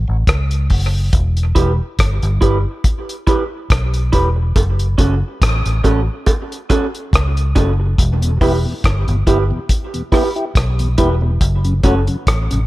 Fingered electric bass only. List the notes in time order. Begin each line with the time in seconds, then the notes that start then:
0.09 A1
0.28 C#2
0.71 F#1
1.13 E1
1.56 E1
1.99 G1
2.23 G1
2.42 G1
3.70 B1
4.13 E1
4.56 F#1
4.99 F#1
5.42 A1
5.66 A1
5.85 A1
7.13 C#2
7.56 F#1
7.99 E1
8.41 E1
8.84 G1
9.08 G1
9.27 G1
10.56 B1
10.99 E1
11.41 F#1
11.84 F#1
12.27 A1
12.52 A1